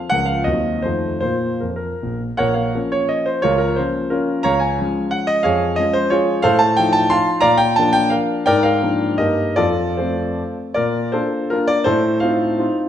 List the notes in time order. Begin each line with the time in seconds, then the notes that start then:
Already playing: F5
0.10 C#2 F3 C#4 A#4 F#5
0.26 F5
0.44 D#2 F#3 C4 F#4 D#5
0.82 F2 D#3 A3 F4 C5
1.20 A#2 A#3 F4 C5
1.60 F2 A#4
1.70 C5
1.76 A#4
2.03 A#1
2.37 A#1 A#4 C#5 F#5
2.54 A#4 C#5 F5
2.75 F3 A#3 C#4
2.92 C#5
3.09 D#5
3.26 C5
3.42 C#2 F4 A#4 C#5
3.58 A#4
3.76 F3 A#3 C#4 C5
4.10 C#4 F4 A#4
4.43 C#2 C#5 F5 A#5
4.59 C#5 F5 G#5
4.79 F3 G#3 C#4
5.11 F#5
5.27 D#5
5.43 F2 G#4 C#5 F5
5.76 F3 G#3 C#4 D#5
5.93 C5
6.10 F4 G#4 C#5
6.42 A2 A4 C5 F5
6.59 A5
6.77 F3 D#4 G5
6.93 A5
7.10 F5 A5 C6
7.41 A#2 D5 F5 A#5
7.58 G5
7.76 F3 A#3 D4 A5
7.93 G5
8.10 A#4 D5 F5
8.46 G#2 A#4 D5 G5
8.63 A#4 D5 F5
8.82 F3 A#3 D4
9.18 G2 G3 A#3 D#4 G4 A#4 D#5
9.56 F2 F4 A4 D5
9.97 A3 C4 F4 A4 C5
10.74 A#2 A#4 D5
11.12 A#3 D4 F4 A4 C5
11.50 A#3 D4 F4 A#4
11.68 A#4 D5
11.84 A2 A4 C5
12.20 C4 D#4 F4 C5 F5
12.58 C4 D#4 F4